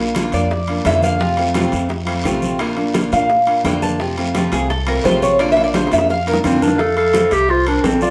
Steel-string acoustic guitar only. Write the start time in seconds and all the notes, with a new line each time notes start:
0.00 A#3 D4 F4
0.15 D3 A#3 D4 F4
0.33 A#3 D4 F4
0.51 muted steel-string acoustic guitar stroke
0.69 A#3 D4 F4
0.85 D3 A#3 D4 F4
1.20 C3 F3 A3 C4 F4
1.37 A3 C4 F4
1.54 C3 F3 A3 C4 F4
1.72 A3 C4 F4
1.89 muted steel-string acoustic guitar stroke
2.05 A3 C4 F4
2.24 C3 F3 A3 C4 F4
2.59 D3 A#3 D4 F4
2.76 A#3 D4 F4
2.94 D3 A#3 D4 F4
3.12 A#3 D4 F4
3.30 muted steel-string acoustic guitar stroke
3.47 A#3 D4 F4
3.65 D3 A#3 D4 F4
4.00 C3 F3 A3 C4 F4
4.18 A3 C4 F4
4.35 C3 F3 A3 C4 F4
4.52 A3 C4 F4
4.70 muted steel-string acoustic guitar stroke
4.87 A3 C4 F4
5.05 C3 F3 A3 C4 F4
5.39 D3 A#3 D4 F4
5.57 A#3 D4 F4
5.74 D3 A#3 D4 F4
5.92 A#3 D4 F4
6.10 muted steel-string acoustic guitar stroke
6.27 A#3 D4 F4
6.45 D3 A#3 D4 F4